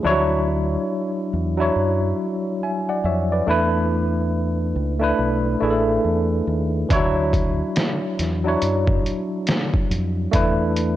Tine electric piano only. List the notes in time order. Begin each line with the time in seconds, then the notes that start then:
0.03 F3 D4 E4 C#5
0.09 F#3
1.58 F#3 D4 E4 C#5
2.63 E5 G#5
2.89 D5 F#5
3.06 C#5 E5
3.32 B4 D5
3.47 A3 D4 E4 B4
5.00 A3 D4 E4
5.04 B4
5.60 A3 D4 E4
5.64 G#4
5.70 A4
6.89 E3 D4 E4
6.93 F#3 C#5
8.44 F#3 D4 E4
8.48 C#5
10.31 A3 D4 E4
10.36 B4